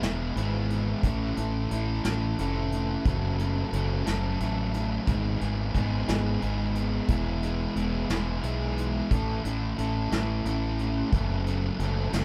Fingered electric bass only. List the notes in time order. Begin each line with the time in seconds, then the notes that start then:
0.02 E1
0.36 G#1
1.03 A1
1.37 A1
1.71 A1
2.05 A1
2.39 F1
3.05 F#1
3.73 F#1
4.07 F#1
4.41 A1
5.08 G#1
5.42 G#1
5.75 G#1
6.08 G#1
6.42 G#1
7.09 E1
7.76 E1
8.10 E1
8.43 B1
9.11 A1
9.45 A1
9.79 A1
10.12 A1
10.45 A1
11.12 F#1
11.79 F#1
12.13 F#1